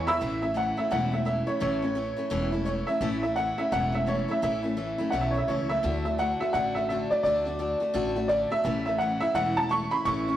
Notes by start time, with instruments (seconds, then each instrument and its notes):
Already playing: upright bass E2
0.07 steel-string acoustic guitar E3 G#3 B3 E4, upright piano E5 B5 E6
0.21 upright bass A1, steel-string acoustic guitar A2 E3 A3 C#4 E4
0.42 steel-string acoustic guitar A3 C#4 E4, upright piano E5
0.54 steel-string acoustic guitar E3 A3 C#4 E4, upright piano F#5
0.77 steel-string acoustic guitar A3 C#4 E4, upright piano E5
0.91 upright bass E1, steel-string acoustic guitar A2 E3 A3 C#4 E4, upright piano F#5
1.12 steel-string acoustic guitar A3 C#4 E4, upright piano E5
1.25 steel-string acoustic guitar E3 A3 C#4 E4, upright piano E5
1.47 steel-string acoustic guitar A3 C#4 E4, upright piano C#5
1.60 upright bass A1, steel-string acoustic guitar A2 E3 A3 C#4 E4, upright piano C#5
1.82 steel-string acoustic guitar A3 C#4 E4
1.95 steel-string acoustic guitar E3 A3 C#4 E4
2.17 steel-string acoustic guitar A3 C#4 E4
2.30 upright bass E1, steel-string acoustic guitar A2 E3 A3 C#4 E4
2.52 steel-string acoustic guitar A3 C#4 E4
2.65 steel-string acoustic guitar E3 A3 C#4 E4, upright piano C#5
2.87 steel-string acoustic guitar A3 C#4 E4, upright piano E5
3.01 upright bass A1, steel-string acoustic guitar A2 E3 A3 C#4 E4
3.23 steel-string acoustic guitar A3 C#4 E4, upright piano E5
3.36 steel-string acoustic guitar E3 A3 C#4 E4, upright piano F#5
3.58 steel-string acoustic guitar A3 C#4 E4, upright piano E5
3.72 upright bass E1, steel-string acoustic guitar A2 E3 A3 C#4 E4, upright piano F#5
3.92 steel-string acoustic guitar A3 C#4 E4, upright piano E5
4.06 steel-string acoustic guitar E3 A3 C#4 E4, upright piano C#5
4.28 steel-string acoustic guitar A3 C#4 E4, upright piano E5
4.42 upright bass A1, steel-string acoustic guitar A2 E3 A3 C#4 E4, upright piano E5
4.63 steel-string acoustic guitar A3 C#4 E4
4.77 steel-string acoustic guitar E3 A3 C#4 E4
4.98 steel-string acoustic guitar A3 C#4 E4
5.10 upright bass B1, steel-string acoustic guitar A2 E3 A3 C#4 E4, upright piano F#5
5.21 upright piano E5
5.31 steel-string acoustic guitar E4, upright piano C#5
5.35 steel-string acoustic guitar A3 C#4, upright piano E5
5.48 upright bass C#2, steel-string acoustic guitar E3 A3 C#4 E4, upright piano C#5
5.69 steel-string acoustic guitar A3 C#4 E4, upright piano E5
5.83 upright bass D2, steel-string acoustic guitar D3 A3 D4 F#4
6.05 steel-string acoustic guitar A3 D4 F#4, upright piano E5
6.18 steel-string acoustic guitar D3 A3 D4 F#4, upright piano F#5
6.40 steel-string acoustic guitar A3 D4 F#4, upright piano E5
6.53 upright bass A1, steel-string acoustic guitar D3 A3 D4 F#4, upright piano F#5
6.75 steel-string acoustic guitar A3 D4 F#4, upright piano E5
6.89 steel-string acoustic guitar D3 A3 D4 F#4, upright piano E5
7.10 steel-string acoustic guitar A3 D4 F#4, upright piano D5
7.23 upright bass D2, steel-string acoustic guitar D3 A3 D4 F#4, upright piano D5
7.45 steel-string acoustic guitar A3 D4 F#4
7.59 steel-string acoustic guitar D3 A3 D4 F#4
7.80 steel-string acoustic guitar A3 D4 F#4
7.94 upright bass A1, steel-string acoustic guitar D3 A3 D4 F#4
8.16 steel-string acoustic guitar A3 D4 F#4
8.28 steel-string acoustic guitar D3 A3 D4 F#4, upright piano D5
8.50 steel-string acoustic guitar A3 D4 F#4, upright piano E5
8.64 upright bass A1, steel-string acoustic guitar A2 E3 A3 C#4 E4
8.86 steel-string acoustic guitar A3 C#4 E4, upright piano E5
8.98 steel-string acoustic guitar E3 A3 C#4 E4, upright piano F#5
9.20 steel-string acoustic guitar A3 C#4 E4, upright piano E5
9.34 upright bass E1, steel-string acoustic guitar A2 E3 A3 C#4 E4, upright piano F#5
9.56 steel-string acoustic guitar A3 C#4 E4, upright piano A5
9.69 steel-string acoustic guitar E3 A3 C#4 E4, upright piano C#6
9.91 steel-string acoustic guitar A3 C#4 E4, upright piano B5
10.05 upright bass A1, steel-string acoustic guitar A2 E3 A3 C#4 E4, upright piano C#6
10.28 steel-string acoustic guitar A3 C#4 E4